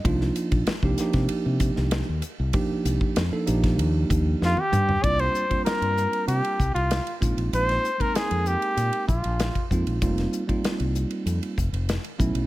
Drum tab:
RD |x-xxx-xxx-x-x-x-|x-x-x-xxx-x-----|xx-xxx-xxx-xxx-x|xx-xxx-xxx-xxx-x|
HH |--p---p---p---p-|--p---p---p---p-|p-p-p-p-p-p-p-p-|p-p-p-p-p-p-p-p-|
SD |-o--o-oo---oo---|----o--o----o---|----o-------o---|-o--o-------o---|
T1 |----------------|-------------o--|----------------|----------------|
T2 |----------------|--------------o-|----------------|----------------|
FT |----------------|---------------o|----------------|----------------|
BD |o--o-o-o--o-----|o--o---o--o-----|o--o------o---o-|---o------o--oo-|

RD |xx-xxx-xxx-xxx-x|
HH |p-p-p-p-p-p-p-p-|
SD |-o--o-------o---|
T1 |----------------|
T2 |----------------|
FT |----------------|
BD |o--o------o---o-|